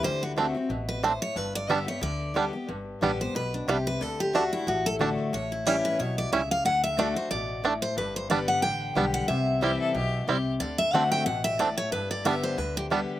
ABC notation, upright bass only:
X:1
M:4/4
L:1/8
Q:"Swing" 1/4=182
K:G
V:1 name="Upright bass" clef=bass
D,,4 A,,,4 | G,,,4 D,,4 | G,,,2 A,,,2 B,,,2 C,,2 | D,,4 A,,,4 |
A,,,4 B,,,2 ^C,,2 | D,,4 A,,,4 | G,,,4 A,,,2 B,,,2 | C,,4 B,,,2 C,,2 |
D,,4 A,,,4 | G,,,4 D,,4 |]